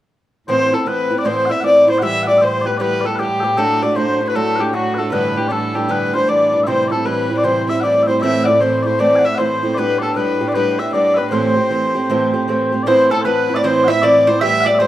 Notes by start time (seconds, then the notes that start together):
0.48 A2 E3 B3 C4 E4 C5
0.72 B3 C4 E4 A4
0.86 E3 B3 C4 E4 B4
1.10 B3 C4 E4
1.18 D5
1.25 A2 E3 B3 C4 E4 C5
1.46 E4 F#5
1.50 B3 C4 E5
1.60 E3 B3 C4 E4 D5 F#5
1.66 D5
1.87 B3 C4 E4 C5
1.99 E3 G3 B3 F#5
2.03 G4 E5
2.23 G4 F#5
2.27 G3 B3 D5
2.38 E3 G3 B3 G4 C5 E5
2.44 C5
2.61 G4 D5
2.66 G3 B3 B4
2.77 E3 G3 B3 G4 B4 D5
3.01 B3 G4 D5
3.05 G3 A4
3.16 E3 G3 G4 B4
3.20 B3 G4
3.40 G4 A4
3.44 G3 B3
3.57 F#3 A3 D4 F#4 A4
3.82 A3 D4 F#4 D5
3.96 F#3 A3 D4 F#4 C5
4.21 A3 D4 F#4
4.28 B4
4.35 F#3 A3 D4 F#4 A4
4.56 D4 F#4 B4
4.60 A3 G4
4.73 F#3 A3 D4 F#4
4.95 D4 F#4 A4 B4
4.99 A3
5.12 G2 D3 E3 G3 B3 D4 B4
5.36 E3 G3 B3 D4 G4
5.48 E3 G3 B3 D4 A4 D5
5.74 E3 G3 B3 D4 G4
5.88 G2 D3 E3 G3 B3 D4 B4
6.13 E3 G3 B3 D4 C5
6.28 E3 G3 B3 D4 D5
6.52 E3 G3 B3 D4
6.64 A2 C3 E3 G3 C4 E4 C5 E5
6.88 C4 E4 A4 D5
6.92 G3 A4
7.05 E3 G3 C4 E4 B4
7.30 G3 C4 E4
7.37 D5
7.44 C3 E3 G3 C4 E4 C5
7.68 G3 C4 E4 E5
7.80 E3 G3 D5 F#5
7.84 C4 E4
8.03 E5
8.07 G3 C4 E4 C5
8.21 A2 E3 A3 C4 E4 E5
8.44 A3 E4 D5 F#5
8.48 C4
8.60 E3 A3 C4 E4 C5
8.82 A3 E4 C5 D5
8.87 C4 C5
8.99 A2 E3 A3 C4 E4 D5
9.16 F#5 G#5
9.23 A3 C4 E4 E5
9.35 E3 C5 F#5
9.39 A3 C4 E4 C5
9.63 A3 C4 E4
9.74 G3 B3 D4 B4 D5
9.79 G4 B4
9.98 G4 A4 D5
10.02 B3 D4 A4
10.16 G3 B3 D4 G4 B4
10.41 B3 D4 G4
10.48 D5
10.54 G3 B3 D4 G4 B4
10.79 B3 D4 G4 E5
10.93 G3 B3 D4 G4 D5
11.15 G4 B4 E5
11.19 B3 D4
11.31 A2 E3 A3 C4 G4 C5
11.56 A3 C4 G4
11.70 E3 A3 C4 G4
11.95 A3 C4 G4
12.10 A2 E3 A3 C4 G4
12.34 A3 C4 G4
12.48 E3 A3 C4 G4
12.72 A3 C4 G4
12.83 A2 E3 B3 D5
12.87 A2 C4 E4 C5
13.10 B3 C4 E4 A4
13.21 E3 B4 C5
13.25 B3 C4 E4 B4
13.49 B3 C4 E4
13.55 D5 E5
13.59 D5
13.64 A2 E3 B3 C4 E4 C5
13.84 E4 E5 F#5
13.89 B3 C4 E5
14.02 E3 B3 C4 E4 D5
14.27 B3 C4 E4 C5
14.40 E3 G3 B3 G4 E5
14.60 F#5
14.65 G3 B3 G4 D5
14.75 E5
14.79 E3 G3 B3 G4 C5